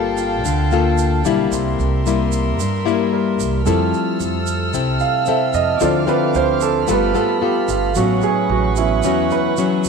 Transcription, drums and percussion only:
0.17 shaker
0.45 shaker
0.71 shaker
0.98 shaker
1.25 shaker
1.52 shaker
1.80 shaker
2.06 shaker
2.32 shaker
2.60 shaker
2.87 shaker
3.40 shaker
3.66 shaker
3.94 shaker
4.20 shaker
4.47 shaker
4.74 shaker
5.00 shaker
5.26 shaker
5.53 shaker
5.80 shaker
6.07 shaker
6.34 shaker
6.61 shaker
6.88 shaker
7.14 shaker
7.68 shaker
7.95 shaker
8.22 shaker
8.76 shaker
9.03 shaker
9.30 shaker
9.57 shaker
9.84 shaker

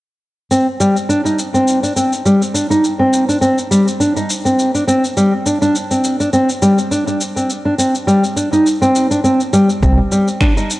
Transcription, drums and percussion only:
0.51 shaker
0.81 shaker
0.97 shaker
1.10 shaker
1.26 shaker
1.39 shaker
1.55 shaker
1.68 shaker
1.84 shaker
1.97 shaker
2.13 shaker
2.26 shaker
2.42 shaker
2.55 shaker
2.71 shaker
2.85 shaker
3.13 shaker
3.29 shaker
3.42 shaker
3.58 shaker
3.72 shaker
3.88 shaker
4.01 shaker
4.17 shaker
4.30 shaker
4.46 shaker
4.59 shaker
4.75 shaker
4.89 shaker
5.04 shaker
5.17 shaker
5.46 shaker
5.62 shaker
5.75 shaker
5.91 shaker
6.04 shaker
6.20 shaker
6.33 shaker
6.49 shaker
6.62 shaker
6.78 shaker
6.92 shaker
7.08 shaker
7.21 shaker
7.37 shaker
7.50 shaker
7.79 shaker
7.95 shaker
8.08 shaker
8.24 shaker
8.37 shaker
8.53 shaker
8.66 shaker
8.82 shaker
8.96 shaker
9.11 shaker
9.25 shaker
9.40 shaker
9.53 shaker
9.70 shaker
9.83 kick, shaker
10.12 shaker
10.28 shaker
10.41 finger snap, kick, shaker
10.57 shaker
10.70 shaker

